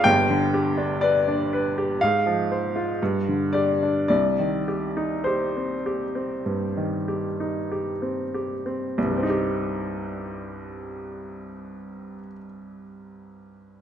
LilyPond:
\new Staff \with { instrumentName = "Upright piano" } { \time 4/4 \key c \minor \tempo 4 = 49 << { g''4 d''4 f''4. d''8 | d''4 c''2~ c''8 r8 | <c, g, g c' ees' g'>1 | } \\ { <g,, g,>16 d16 g'16 d'16 b'16 d'16 b'16 g'16 aes,16 f16 c''16 f'16 g,16 d16 g'16 d'16 | c,16 ees16 g'16 ees'16 g'16 c'16 g'16 c'16 g,16 ees16 g'16 ees'16 g'16 c'16 g'16 c'16 | r1 | } >> }